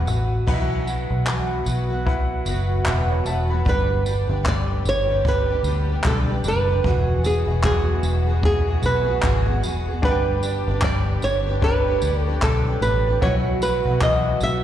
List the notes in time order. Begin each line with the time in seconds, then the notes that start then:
Already playing: E4 B4 F#5
0.06 A1 F#3 B3 F#4 B4, tambourine
0.47 B1 B2 E3 F#3 B3 D#4 F#4 B4 F#5, kick, crash
0.54 E4
0.85 F#3 B3 F#4 B4, tambourine
1.10 B1
1.25 B2 E3 F#3 B3 F#4 B4, clap
1.64 B1 F#3 B3 F#4 B4, tambourine
1.89 F#3 B3 F#4 B4
2.06 E4 B4 F#5, kick
2.45 F#1 F#3 B3 F#4 B4, tambourine
2.86 E1 B2 E3 F#3 B3 F#4 B4 E5, clap
3.10 C#5 F#5
3.24 E1 F#3 B3 F#4 B4 E5 A5, tambourine
3.48 F#3 B3 F#4 B4 F#5 B5
3.65 G1 D3 G3 B3 D4 G4 B4, kick
3.69 B4
4.05 G3 D4 G4 B4, tambourine
4.28 G1 D4 G4 B4
4.43 G3 D4 G4 B4, kick, clap
4.48 D5
4.85 G1 C#5, tambourine
5.08 D4 G4 B4
5.25 B4, kick
5.49 D4 G4 B4
5.63 D2 G3 D4, tambourine
5.68 G4 B4
5.89 D4 G4 B4
6.04 B1 G3 D4 G4 A4 B4, kick, clap
6.29 D4 G4 B4
6.44 F#1 G3 D4 G4 B4, tambourine
6.48 B4
6.69 D4 G4 B4
6.84 E1 E3 F#3 G#3 B3 F#4 G#4, kick
7.24 F#3 B3 F#4 G#4, tambourine
7.47 E1 B3 F#4 G#4
7.64 E3 F#3 B3 F#4 G#4, kick, clap
8.03 E1, tambourine
8.27 B3 F#4 G#4
8.43 G#4, kick
8.67 B3 F#4 G#4
8.82 B1 F#3 B3 F#4 G#4 B4, tambourine
9.05 B3 F#4 G#4
9.22 G#1 E3 F#3 B3 F#4 G#4, kick, clap
9.46 B3 F#4 G#4
9.62 E1 F#3 B3 F#4 G#4, tambourine
9.88 B3 F#4 G#4
10.02 G1 D3 G3 D4 G4 B4 F#5, kick
10.11 G5
10.42 G3 D4 G4 B4, tambourine
10.67 G1 D4 G4 B4
10.82 G3 D4 G4 B4 D5, kick, clap
11.22 G1 C#5, tambourine
11.46 D4 G4 B4
11.62 D4 G4 B4 C#5, kick
11.87 D4 G4 B4
12.02 D2 G3 D4 G4 B4, tambourine
12.23 A4
12.27 D4 G4 B4
12.42 B1 G3 D4 G4 A4 B4, kick, clap
12.67 D4 G4 B4
12.81 A1 G3 D4 B4, tambourine
12.85 G4 B4
13.07 D4 G4 B4
13.21 B1 B2 E3 F#3 B3 E4 F#4 B4 C#5 F#5, kick
13.62 F#3 B3 F#4 B4, tambourine
13.85 B1 F#3 B3 F#4 B4
14.01 B2 E3 F#3 B3 F#4 B4 D#5, kick, clap
14.41 B1 E5, tambourine